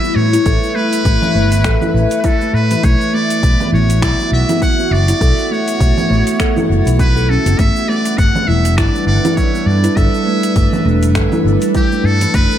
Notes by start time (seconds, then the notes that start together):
Already playing: A3 E4 B4 E5
0.04 B3, cabasa
0.15 A2 C#5
0.33 E4, closed hi-hat, cabasa
0.46 A1 A4, kick, closed hi-hat, cabasa
0.63 cabasa
0.75 A3 B4
0.93 closed hi-hat, cabasa
1.05 A1 A3, kick, closed hi-hat, cabasa
1.22 low conga, cabasa
1.35 G1 A3
1.52 closed hi-hat, cabasa
1.64 A1 A4, finger snap, kick, closed hi-hat, cabasa
1.82 E4, low conga, cabasa
1.94 A1
2.11 closed hi-hat, cabasa
2.19 B4
2.24 E4 A4, kick, closed hi-hat, cabasa
2.41 A3, cabasa
2.54 A2 B4
2.71 E3, closed hi-hat, cabasa
2.83 B1 A3 B3 C#5, kick, closed hi-hat, cabasa
3.01 F#4, cabasa
3.13 A3 D5
3.30 closed hi-hat, cabasa
3.43 B1 B3, kick, closed hi-hat, cabasa
3.56 F#5
3.60 E3, low conga, cabasa
3.72 A1 E4 C#5
3.90 closed hi-hat, cabasa
4.02 B1 E4 D5, finger snap, kick, closed hi-hat, cabasa
4.19 F#3, cabasa
4.32 B1 E5
4.49 E4, closed hi-hat, low conga, cabasa
4.62 F#5, kick, closed hi-hat, cabasa
4.79 B3, cabasa
4.91 F#1 D5
5.08 E4, closed hi-hat, cabasa
5.21 B1 A4, kick, closed hi-hat, cabasa
5.38 cabasa
5.51 A3 C#5
5.68 closed hi-hat, cabasa
5.80 B1 A3, kick, closed hi-hat, cabasa
5.97 low conga, cabasa
6.10 A1 A3
6.27 closed hi-hat, cabasa
6.39 A4, finger snap, kick, closed hi-hat, cabasa
6.57 E4, low conga, cabasa
6.70 F#1
6.86 B1 E3, closed hi-hat, cabasa
6.99 B4, kick, closed hi-hat, cabasa
7.16 A4, cabasa
7.29 C#4 A4
7.46 F#1 B3, closed hi-hat, cabasa
7.59 G1 G3 A3 E5, kick, closed hi-hat, cabasa
7.65 D4
7.76 cabasa
7.88 A3 D5
8.05 A4, closed hi-hat, cabasa
8.15 G1 B3 B4 F#5, kick, closed hi-hat, cabasa
8.35 E3, low conga, cabasa
8.47 E1 E4 E5
8.65 closed hi-hat, cabasa
8.77 G1 E4 D5, finger snap, kick, closed hi-hat, cabasa
8.95 G3, cabasa
9.07 G1 D5
9.25 E4, closed hi-hat, low conga, cabasa
9.36 C#5, kick, closed hi-hat, cabasa
9.55 B3, cabasa
9.66 G2 D5
9.84 E4, closed hi-hat, cabasa
9.96 G1 A4 E5, kick, closed hi-hat, cabasa
10.14 cabasa
10.26 A3
10.43 closed hi-hat, cabasa
10.56 G1 A3, kick, closed hi-hat, cabasa
10.73 low conga, cabasa
10.85 E1 A3
11.03 closed hi-hat, cabasa
11.15 G1 A4, finger snap, kick, closed hi-hat, cabasa
11.32 E4, low conga, cabasa
11.44 G1
11.62 closed hi-hat, cabasa
11.75 E4 G4, kick, closed hi-hat, cabasa
11.92 A3, cabasa
12.04 G2 A4
12.21 E3, closed hi-hat, cabasa
12.34 F#1 E3 A3 B4, kick, closed hi-hat, cabasa
12.51 C#4, cabasa